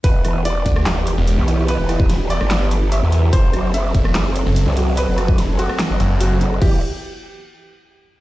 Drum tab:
CC |----------------|----------------|----------------|----------------|
HH |x-x-x-x-x-x-x-x-|x-x-x-x-x-x-x-x-|x-x-x-x-x-x-x-x-|x-x-x-x-x-x-x-x-|
CP |--------x-------|--------x-------|--------x-------|--------x-------|
SD |--r----ro-------|--r-o--ro-------|--r----ro-------|--r-o--ro-------|
BD |o-----o---------|---o------------|o-----o---------|---o------------|

CC |x---------------|
HH |----------------|
CP |----------------|
SD |----------------|
BD |o---------------|